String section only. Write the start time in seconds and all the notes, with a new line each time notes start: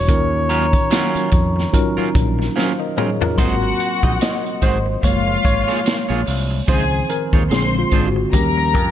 3.39 F#4 F#5
5.03 F4 F5
6.68 G#4 G#5
7.51 C5 C6
8.33 A#4 A#5